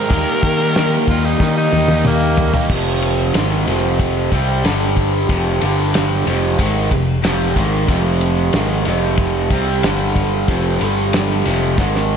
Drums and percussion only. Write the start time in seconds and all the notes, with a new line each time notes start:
0.10 kick, open hi-hat
0.43 kick, open hi-hat
0.75 snare, open hi-hat
1.08 kick, open hi-hat
1.40 kick, snare
1.73 high tom
1.88 high tom
2.05 mid tom
2.37 floor tom
2.54 floor tom
2.70 kick, crash
3.02 ride
3.34 snare, ride
3.67 ride
4.00 kick, ride
4.32 kick, ride
4.65 snare, ride
4.97 kick, ride
5.29 kick, ride
5.61 ride
5.94 snare, ride
6.27 ride
6.59 kick, ride
6.91 kick, ride
7.24 snare, ride
7.56 kick, ride
7.88 kick, ride
8.21 ride
8.53 snare, ride
8.85 ride
9.17 kick, ride
9.50 kick, ride
9.83 snare, ride
10.16 kick, ride
10.48 kick, ride
10.81 ride
11.13 snare, ride
11.45 ride
11.78 kick, snare
11.95 snare